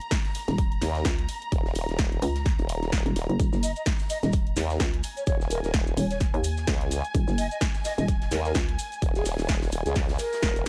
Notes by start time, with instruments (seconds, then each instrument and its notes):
Already playing: string section A#5
0.01 closed hi-hat
0.11 kick, snare, closed hi-hat, open hi-hat
0.24 snare, closed hi-hat
0.35 snare, closed hi-hat, open hi-hat
0.48 fm bass D#1, snare, closed hi-hat
0.58 kick, closed hi-hat
0.72 closed hi-hat
0.82 wobble bass D#2, snare, closed hi-hat, open hi-hat
0.95 snare, closed hi-hat
1.05 fm bass C#2, kick, snare, closed hi-hat
1.19 closed hi-hat
1.28 closed hi-hat, open hi-hat
1.42 closed hi-hat
1.52 wobble bass D#1, kick, closed hi-hat
1.65 snare
1.75 closed hi-hat, open hi-hat
1.89 wobble bass D#1, snare, closed hi-hat
1.98 kick, snare, closed hi-hat
2.12 closed hi-hat
2.22 fm bass C#2, closed hi-hat, open hi-hat
2.35 snare, closed hi-hat
2.46 kick, snare, closed hi-hat
2.59 wobble bass D#1, closed hi-hat
2.69 closed hi-hat, open hi-hat
2.82 snare, closed hi-hat
2.92 kick, snare, closed hi-hat, open hi-hat
3.06 fm bass D#1, closed hi-hat
3.16 wobble bass D#1, snare, closed hi-hat, open hi-hat
3.29 fm bass F#1, closed hi-hat
3.40 fm bass D#1, kick, closed hi-hat, maracas
3.52 fm bass F#1, snare, maracas
3.63 flute D#5, closed hi-hat, open hi-hat, maracas
3.76 flute D#5, closed hi-hat, maracas
3.86 kick, snare, closed hi-hat, open hi-hat, maracas
3.99 snare, closed hi-hat, maracas
4.09 flute D#5, snare, closed hi-hat, open hi-hat, maracas
4.23 fm bass D#1, flute D#5, snare, closed hi-hat, maracas
4.33 kick, closed hi-hat, maracas
4.47 closed hi-hat
4.56 wobble bass D#2, snare, closed hi-hat, open hi-hat, maracas
4.70 snare, closed hi-hat, maracas
4.80 fm bass C#2, kick, snare, closed hi-hat, maracas
4.94 string section G#5, closed hi-hat
5.03 closed hi-hat, open hi-hat, maracas
5.17 flute C#5, closed hi-hat, maracas
5.27 wobble bass D#1, flute C#5, kick, closed hi-hat, maracas
5.40 snare, maracas
5.50 flute A#4, closed hi-hat, open hi-hat, maracas
5.64 wobble bass D#1, flute A#4, snare, closed hi-hat, maracas
5.74 kick, snare, closed hi-hat, maracas
5.87 closed hi-hat, maracas
5.97 fm bass D#1, flute C#5, closed hi-hat, open hi-hat, maracas
6.10 flute C#5, snare, closed hi-hat, maracas
6.20 kick, snare, closed hi-hat, maracas
6.34 fm bass D#2, closed hi-hat
6.44 closed hi-hat, open hi-hat, maracas
6.57 snare, closed hi-hat, maracas
6.67 wobble bass C#2, kick, snare, closed hi-hat, open hi-hat, maracas
6.81 closed hi-hat
6.91 snare, closed hi-hat, open hi-hat, maracas
7.04 closed hi-hat, maracas
7.15 fm bass D#1, kick, closed hi-hat, maracas
7.28 fm bass F#1, snare, maracas
7.38 flute D#5, closed hi-hat, open hi-hat, maracas
7.51 flute D#5, closed hi-hat, maracas
7.61 kick, snare, closed hi-hat, open hi-hat, maracas
7.74 snare, closed hi-hat, maracas
7.85 flute D#5, snare, open hi-hat, maracas
7.98 fm bass D#1, flute D#5, snare, closed hi-hat, maracas
8.08 kick, snare, closed hi-hat, maracas
8.22 snare, closed hi-hat
8.31 wobble bass D#2, flute A#4, snare, closed hi-hat, open hi-hat, maracas
8.45 flute A#4, snare, closed hi-hat, maracas
8.54 fm bass C#2, kick, snare, closed hi-hat, maracas
8.69 closed hi-hat
8.79 closed hi-hat, open hi-hat, maracas
8.92 closed hi-hat, maracas
9.02 wobble bass D#1, kick, closed hi-hat, maracas
9.15 flute G#4, snare, closed hi-hat, maracas
9.25 snare, open hi-hat, maracas
9.38 wobble bass D#1, snare, closed hi-hat, open hi-hat, maracas
9.48 kick, snare, closed hi-hat, open hi-hat, maracas
9.62 snare, closed hi-hat, open hi-hat, maracas
9.72 wobble bass D#1, closed hi-hat, open hi-hat, maracas
9.86 wobble bass C#2, flute G#4, snare, closed hi-hat, maracas
9.96 kick, snare, closed hi-hat, open hi-hat, maracas
10.09 snare, closed hi-hat, open hi-hat
10.19 flute A#4, snare, open hi-hat, maracas
10.33 snare, closed hi-hat, open hi-hat, maracas
10.42 wobble bass D#1, kick, snare, open hi-hat, maracas
10.56 closed hi-hat, maracas